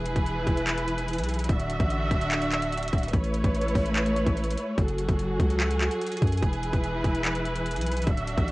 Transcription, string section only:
0, 0, Header, 1, 2, 480
1, 0, Start_track
1, 0, Tempo, 410959
1, 1743, Time_signature, 4, 2, 24, 8
1, 9947, End_track
2, 0, Start_track
2, 0, Title_t, "String section"
2, 0, Program_c, 0, 48
2, 0, Note_on_c, 0, 52, 78
2, 0, Note_on_c, 0, 64, 76
2, 0, Note_on_c, 0, 68, 71
2, 0, Note_on_c, 0, 71, 91
2, 1705, Note_off_c, 0, 68, 0
2, 1723, Note_off_c, 0, 52, 0
2, 1723, Note_off_c, 0, 64, 0
2, 1723, Note_off_c, 0, 71, 0
2, 1742, Note_on_c, 0, 50, 80
2, 1742, Note_on_c, 0, 66, 72
2, 1743, Note_on_c, 0, 62, 74
2, 1743, Note_on_c, 0, 76, 86
2, 3643, Note_off_c, 0, 50, 0
2, 3643, Note_off_c, 0, 66, 0
2, 3643, Note_off_c, 0, 76, 0
2, 3644, Note_off_c, 0, 62, 0
2, 3662, Note_on_c, 0, 57, 80
2, 3662, Note_on_c, 0, 64, 70
2, 3662, Note_on_c, 0, 71, 74
2, 3662, Note_on_c, 0, 73, 85
2, 5563, Note_off_c, 0, 57, 0
2, 5563, Note_off_c, 0, 64, 0
2, 5563, Note_off_c, 0, 71, 0
2, 5563, Note_off_c, 0, 73, 0
2, 5581, Note_on_c, 0, 68, 71
2, 5582, Note_on_c, 0, 54, 76
2, 5582, Note_on_c, 0, 66, 73
2, 5582, Note_on_c, 0, 69, 87
2, 7483, Note_off_c, 0, 54, 0
2, 7483, Note_off_c, 0, 66, 0
2, 7483, Note_off_c, 0, 69, 0
2, 7502, Note_on_c, 0, 52, 82
2, 7502, Note_on_c, 0, 64, 75
2, 7502, Note_on_c, 0, 71, 87
2, 9383, Note_off_c, 0, 68, 0
2, 9403, Note_off_c, 0, 52, 0
2, 9403, Note_off_c, 0, 64, 0
2, 9403, Note_off_c, 0, 71, 0
2, 9423, Note_on_c, 0, 50, 79
2, 9423, Note_on_c, 0, 62, 73
2, 9423, Note_on_c, 0, 66, 74
2, 9423, Note_on_c, 0, 76, 92
2, 9947, Note_off_c, 0, 50, 0
2, 9947, Note_off_c, 0, 62, 0
2, 9947, Note_off_c, 0, 66, 0
2, 9947, Note_off_c, 0, 76, 0
2, 9947, End_track
0, 0, End_of_file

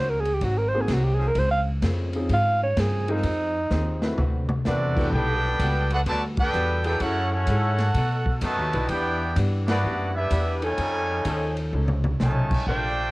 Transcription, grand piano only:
0, 0, Header, 1, 2, 480
1, 0, Start_track
1, 0, Tempo, 471328
1, 1380, Time_signature, 4, 2, 24, 8
1, 13351, End_track
2, 0, Start_track
2, 0, Title_t, "Grand piano"
2, 0, Program_c, 0, 0
2, 750, Note_on_c, 0, 58, 77
2, 752, Note_on_c, 0, 60, 71
2, 756, Note_on_c, 0, 63, 69
2, 756, Note_on_c, 0, 66, 71
2, 762, Note_on_c, 0, 68, 90
2, 889, Note_off_c, 0, 58, 0
2, 890, Note_off_c, 0, 60, 0
2, 892, Note_off_c, 0, 63, 0
2, 892, Note_off_c, 0, 66, 0
2, 895, Note_off_c, 0, 68, 0
2, 2191, Note_on_c, 0, 63, 67
2, 2194, Note_on_c, 0, 60, 78
2, 2194, Note_on_c, 0, 65, 70
2, 2197, Note_on_c, 0, 61, 70
2, 2202, Note_on_c, 0, 68, 83
2, 2329, Note_off_c, 0, 63, 0
2, 2330, Note_off_c, 0, 60, 0
2, 2330, Note_off_c, 0, 65, 0
2, 2331, Note_off_c, 0, 61, 0
2, 2334, Note_off_c, 0, 68, 0
2, 3140, Note_on_c, 0, 56, 65
2, 3147, Note_on_c, 0, 60, 61
2, 3147, Note_on_c, 0, 63, 60
2, 3148, Note_on_c, 0, 70, 74
2, 3149, Note_on_c, 0, 65, 62
2, 3283, Note_off_c, 0, 56, 0
2, 3286, Note_off_c, 0, 60, 0
2, 3286, Note_off_c, 0, 63, 0
2, 3287, Note_off_c, 0, 65, 0
2, 3287, Note_off_c, 0, 70, 0
2, 4100, Note_on_c, 0, 57, 74
2, 4101, Note_on_c, 0, 60, 65
2, 4104, Note_on_c, 0, 64, 66
2, 4105, Note_on_c, 0, 71, 84
2, 4106, Note_on_c, 0, 66, 65
2, 4242, Note_off_c, 0, 57, 0
2, 4242, Note_off_c, 0, 60, 0
2, 4244, Note_off_c, 0, 64, 0
2, 4245, Note_off_c, 0, 66, 0
2, 4245, Note_off_c, 0, 71, 0
2, 5060, Note_on_c, 0, 57, 68
2, 5060, Note_on_c, 0, 66, 64
2, 5062, Note_on_c, 0, 62, 64
2, 5066, Note_on_c, 0, 67, 60
2, 5068, Note_on_c, 0, 71, 74
2, 5202, Note_off_c, 0, 57, 0
2, 5202, Note_off_c, 0, 66, 0
2, 5203, Note_off_c, 0, 62, 0
2, 5205, Note_off_c, 0, 67, 0
2, 5205, Note_off_c, 0, 71, 0
2, 13351, End_track
0, 0, End_of_file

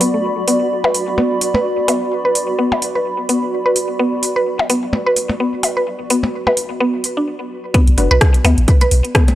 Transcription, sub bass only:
0, 0, Header, 1, 2, 480
1, 0, Start_track
1, 0, Key_signature, 2, "minor"
1, 0, Tempo, 468750
1, 248, Time_signature, 4, 2, 24, 8
1, 9574, End_track
2, 0, Start_track
2, 0, Title_t, "Sub bass"
2, 0, Program_c, 0, 38
2, 6, Note_on_c, 0, 35, 78
2, 113, Note_off_c, 0, 35, 0
2, 141, Note_on_c, 0, 38, 96
2, 323, Note_off_c, 0, 38, 0
2, 382, Note_on_c, 0, 35, 97
2, 464, Note_off_c, 0, 35, 0
2, 487, Note_on_c, 0, 30, 86
2, 593, Note_off_c, 0, 30, 0
2, 622, Note_on_c, 0, 35, 77
2, 704, Note_off_c, 0, 35, 0
2, 967, Note_on_c, 0, 38, 81
2, 1073, Note_off_c, 0, 38, 0
2, 1103, Note_on_c, 0, 33, 79
2, 1185, Note_off_c, 0, 33, 0
2, 1447, Note_on_c, 0, 35, 95
2, 1553, Note_off_c, 0, 35, 0
2, 1928, Note_on_c, 0, 35, 88
2, 2034, Note_off_c, 0, 35, 0
2, 2303, Note_on_c, 0, 35, 98
2, 2385, Note_off_c, 0, 35, 0
2, 2408, Note_on_c, 0, 30, 87
2, 2514, Note_off_c, 0, 30, 0
2, 2543, Note_on_c, 0, 35, 78
2, 2625, Note_off_c, 0, 35, 0
2, 2888, Note_on_c, 0, 38, 87
2, 2994, Note_off_c, 0, 38, 0
2, 3023, Note_on_c, 0, 33, 81
2, 3105, Note_off_c, 0, 33, 0
2, 3369, Note_on_c, 0, 35, 94
2, 3474, Note_off_c, 0, 35, 0
2, 3848, Note_on_c, 0, 35, 92
2, 3954, Note_off_c, 0, 35, 0
2, 4223, Note_on_c, 0, 35, 97
2, 4305, Note_off_c, 0, 35, 0
2, 4328, Note_on_c, 0, 30, 81
2, 4434, Note_off_c, 0, 30, 0
2, 4464, Note_on_c, 0, 35, 78
2, 4546, Note_off_c, 0, 35, 0
2, 4809, Note_on_c, 0, 38, 83
2, 4914, Note_off_c, 0, 38, 0
2, 4943, Note_on_c, 0, 33, 76
2, 5025, Note_off_c, 0, 33, 0
2, 5288, Note_on_c, 0, 35, 95
2, 5394, Note_off_c, 0, 35, 0
2, 5767, Note_on_c, 0, 35, 94
2, 5873, Note_off_c, 0, 35, 0
2, 6143, Note_on_c, 0, 35, 102
2, 6225, Note_off_c, 0, 35, 0
2, 6248, Note_on_c, 0, 30, 84
2, 6354, Note_off_c, 0, 30, 0
2, 6383, Note_on_c, 0, 35, 76
2, 6465, Note_off_c, 0, 35, 0
2, 6728, Note_on_c, 0, 38, 85
2, 6834, Note_off_c, 0, 38, 0
2, 6864, Note_on_c, 0, 33, 77
2, 6945, Note_off_c, 0, 33, 0
2, 7208, Note_on_c, 0, 30, 93
2, 7314, Note_off_c, 0, 30, 0
2, 7344, Note_on_c, 0, 30, 93
2, 7425, Note_off_c, 0, 30, 0
2, 8063, Note_on_c, 0, 35, 100
2, 8145, Note_off_c, 0, 35, 0
2, 8168, Note_on_c, 0, 30, 84
2, 8274, Note_off_c, 0, 30, 0
2, 8304, Note_on_c, 0, 35, 78
2, 8385, Note_off_c, 0, 35, 0
2, 8648, Note_on_c, 0, 38, 86
2, 8754, Note_off_c, 0, 38, 0
2, 8783, Note_on_c, 0, 33, 82
2, 8865, Note_off_c, 0, 33, 0
2, 9128, Note_on_c, 0, 35, 99
2, 9234, Note_off_c, 0, 35, 0
2, 9574, End_track
0, 0, End_of_file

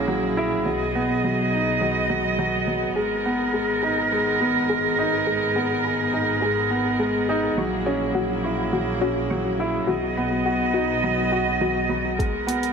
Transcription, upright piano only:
0, 0, Header, 1, 2, 480
1, 0, Start_track
1, 0, Key_signature, 5, "minor"
1, 0, Tempo, 576923
1, 548, Time_signature, 4, 2, 24, 8
1, 10591, End_track
2, 0, Start_track
2, 0, Title_t, "Upright piano"
2, 0, Program_c, 0, 0
2, 0, Control_c, 0, 64, 127
2, 0, Note_on_c, 0, 54, 67
2, 0, Note_on_c, 0, 61, 77
2, 0, Note_on_c, 0, 64, 59
2, 65, Note_off_c, 0, 54, 0
2, 65, Note_on_c, 0, 54, 76
2, 295, Note_off_c, 0, 54, 0
2, 310, Note_off_c, 0, 64, 0
2, 310, Note_on_c, 0, 64, 86
2, 537, Note_off_c, 0, 64, 0
2, 545, Note_on_c, 0, 54, 66
2, 558, Control_c, 0, 64, 0
2, 562, Note_off_c, 0, 61, 0
2, 684, Note_off_c, 0, 54, 0
2, 725, Control_c, 0, 64, 127
2, 794, Note_on_c, 0, 59, 80
2, 1019, Note_off_c, 0, 59, 0
2, 1033, Note_on_c, 0, 54, 57
2, 1168, Note_off_c, 0, 54, 0
2, 1272, Note_on_c, 0, 63, 58
2, 1498, Note_off_c, 0, 63, 0
2, 1507, Note_on_c, 0, 54, 65
2, 1734, Note_off_c, 0, 54, 0
2, 1746, Note_on_c, 0, 54, 78
2, 1974, Note_off_c, 0, 54, 0
2, 1986, Note_on_c, 0, 54, 78
2, 2124, Note_off_c, 0, 54, 0
2, 2226, Note_on_c, 0, 54, 63
2, 2455, Note_off_c, 0, 54, 0
2, 2466, Note_on_c, 0, 56, 62
2, 2478, Control_c, 0, 64, 0
2, 2624, Control_c, 0, 64, 127
2, 2695, Note_off_c, 0, 56, 0
2, 2710, Note_on_c, 0, 59, 81
2, 2938, Note_off_c, 0, 59, 0
2, 2948, Note_on_c, 0, 56, 62
2, 3085, Note_off_c, 0, 56, 0
2, 3190, Note_on_c, 0, 63, 60
2, 3417, Note_off_c, 0, 63, 0
2, 3431, Note_on_c, 0, 56, 67
2, 3658, Note_off_c, 0, 56, 0
2, 3668, Note_on_c, 0, 59, 77
2, 3897, Note_off_c, 0, 59, 0
2, 3909, Note_on_c, 0, 56, 78
2, 4137, Note_off_c, 0, 56, 0
2, 4148, Note_on_c, 0, 63, 80
2, 4376, Note_off_c, 0, 63, 0
2, 4384, Note_on_c, 0, 56, 67
2, 4523, Note_off_c, 0, 56, 0
2, 4624, Note_on_c, 0, 59, 81
2, 4854, Note_off_c, 0, 59, 0
2, 4861, Note_on_c, 0, 68, 62
2, 5093, Note_off_c, 0, 68, 0
2, 5102, Note_on_c, 0, 63, 60
2, 5333, Note_off_c, 0, 63, 0
2, 5339, Note_on_c, 0, 56, 71
2, 5572, Note_off_c, 0, 56, 0
2, 5582, Note_on_c, 0, 59, 76
2, 5813, Note_off_c, 0, 59, 0
2, 5816, Note_on_c, 0, 56, 78
2, 6050, Note_off_c, 0, 56, 0
2, 6065, Note_on_c, 0, 63, 86
2, 6295, Note_off_c, 0, 63, 0
2, 6302, Note_on_c, 0, 54, 73
2, 6318, Control_c, 0, 64, 0
2, 6460, Control_c, 0, 64, 127
2, 6533, Note_off_c, 0, 54, 0
2, 6542, Note_on_c, 0, 61, 88
2, 6773, Note_off_c, 0, 61, 0
2, 6777, Note_on_c, 0, 54, 61
2, 6920, Note_off_c, 0, 54, 0
2, 7023, Note_on_c, 0, 64, 63
2, 7254, Note_off_c, 0, 64, 0
2, 7263, Note_on_c, 0, 54, 68
2, 7494, Note_off_c, 0, 54, 0
2, 7499, Note_on_c, 0, 61, 83
2, 7732, Note_off_c, 0, 61, 0
2, 7744, Note_on_c, 0, 54, 85
2, 7975, Note_off_c, 0, 54, 0
2, 7987, Note_on_c, 0, 64, 85
2, 8216, Note_off_c, 0, 64, 0
2, 8226, Note_on_c, 0, 54, 67
2, 8240, Control_c, 0, 64, 0
2, 8364, Note_off_c, 0, 54, 0
2, 8389, Control_c, 0, 64, 127
2, 8467, Note_on_c, 0, 59, 81
2, 8696, Note_off_c, 0, 59, 0
2, 8705, Note_on_c, 0, 66, 64
2, 8935, Note_off_c, 0, 66, 0
2, 8943, Note_on_c, 0, 63, 64
2, 9174, Note_off_c, 0, 63, 0
2, 9182, Note_on_c, 0, 54, 67
2, 9413, Note_off_c, 0, 54, 0
2, 9419, Note_on_c, 0, 66, 83
2, 9652, Note_off_c, 0, 66, 0
2, 9660, Note_on_c, 0, 54, 65
2, 9882, Note_off_c, 0, 54, 0
2, 9894, Note_on_c, 0, 54, 67
2, 10129, Note_off_c, 0, 54, 0
2, 10135, Note_on_c, 0, 56, 67
2, 10161, Control_c, 0, 64, 0
2, 10320, Control_c, 0, 64, 127
2, 10370, Note_off_c, 0, 56, 0
2, 10376, Note_on_c, 0, 59, 86
2, 10591, Note_off_c, 0, 59, 0
2, 10591, End_track
0, 0, End_of_file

